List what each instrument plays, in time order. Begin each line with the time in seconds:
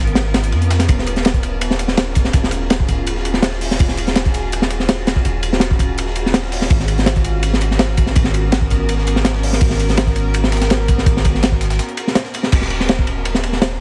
Already playing: 808-style bass G#1, ambient pad B3 C#4 F4 A#4
0.07 closed hi-hat
0.15 snare, ride
0.34 snare, closed hi-hat, ride
0.44 closed hi-hat
0.52 808-style bass F2, snare, ride
0.62 closed hi-hat
0.70 snare, closed hi-hat, ride
0.79 snare, closed hi-hat
0.88 808-style bass D#1, ambient pad C#4 F4 F#4 G#4, kick, closed hi-hat, ride
0.98 snare
1.07 closed hi-hat, ride
1.16 snare, closed hi-hat
1.25 snare, closed hi-hat, ride
1.34 kick, closed hi-hat
1.43 closed hi-hat, ride
1.61 closed hi-hat, ride
1.71 snare
1.79 closed hi-hat, ride
1.88 snare
1.97 snare, closed hi-hat, ride
2.15 kick, closed hi-hat, ride
2.24 snare
2.33 808-style bass D#1, kick, closed hi-hat, ride
2.44 snare
2.51 closed hi-hat, ride
2.70 snare, closed hi-hat, ride
2.80 kick
2.88 kick, closed hi-hat, ride
3.07 closed hi-hat, ride
3.16 snare
3.25 closed hi-hat, ride
3.34 snare
3.42 snare, closed hi-hat, ride
3.53 snare
3.61 snare, closed hi-hat, open hi-hat
3.71 snare
3.79 808-style bass D#1, kick, closed hi-hat, ride
3.89 snare
3.97 closed hi-hat, ride
4.07 snare, closed hi-hat
4.16 snare, closed hi-hat, ride
4.25 kick, closed hi-hat
4.34 closed hi-hat, ride
4.52 closed hi-hat, ride
4.62 snare
4.70 closed hi-hat, ride
4.80 snare
4.89 snare, closed hi-hat, ride
5.07 snare, closed hi-hat, ride
5.16 kick
5.25 808-style bass D#1, closed hi-hat, ride
5.43 closed hi-hat, ride
5.53 snare
5.60 snare, closed hi-hat, ride
5.71 kick
5.79 kick, closed hi-hat, ride
5.98 closed hi-hat, ride
6.07 snare
6.15 closed hi-hat, ride
6.26 snare
6.34 snare, closed hi-hat, ride
6.44 snare
6.52 snare, closed hi-hat, open hi-hat
6.61 snare
6.70 808-style bass G#1, ambient pad B3 A#4, kick, closed hi-hat, ride
6.80 snare
6.88 closed hi-hat, ride
6.98 snare, closed hi-hat
7.06 snare, closed hi-hat, ride
7.16 kick, closed hi-hat
7.24 closed hi-hat, ride
7.43 closed hi-hat, ride
7.53 snare
7.61 closed hi-hat, ride
7.71 snare
7.79 snare, closed hi-hat, ride
7.97 kick, closed hi-hat, ride
8.06 snare
8.16 808-style bass G#1, kick, closed hi-hat, ride
8.24 snare
8.34 closed hi-hat, ride
8.52 snare, closed hi-hat, ride
8.61 kick
8.70 kick, closed hi-hat, ride
8.89 closed hi-hat, ride
8.98 snare
9.07 closed hi-hat, ride
9.16 snare
9.25 snare, closed hi-hat, ride
9.35 snare
9.43 snare, closed hi-hat, open hi-hat
9.53 snare
9.61 808-style bass G#1, kick, closed hi-hat, ride
9.70 snare
9.79 closed hi-hat, ride
9.89 snare, closed hi-hat
9.97 snare, closed hi-hat, ride
10.07 kick, closed hi-hat
10.16 closed hi-hat, ride
10.34 closed hi-hat, ride
10.44 snare
10.52 snare, closed hi-hat, ride
10.57 snare, closed hi-hat
10.61 snare, closed hi-hat
10.70 snare, closed hi-hat, ride
10.88 kick, closed hi-hat, ride
10.98 snare
11.06 808-style bass G#1, kick, closed hi-hat, ride
11.17 snare
11.25 kick, closed hi-hat, ride
11.34 snare
11.43 snare, closed hi-hat, ride
11.52 kick
11.61 snare, closed hi-hat
11.70 snare, closed hi-hat
11.79 snare, closed hi-hat
11.89 closed hi-hat
11.97 closed hi-hat, ride
12.07 snare
12.15 snare, closed hi-hat, ride
12.25 snare
12.34 snare, closed hi-hat, ride
12.43 snare
12.52 808-style bass D#1, ambient pad C#4 F4 F#4 G#4, kick, crash, ride
12.61 snare
12.70 ride
12.80 snare
12.89 snare, ride
12.99 kick
13.07 ride
13.25 ride
13.34 snare
13.43 ride
13.52 snare
13.62 snare, ride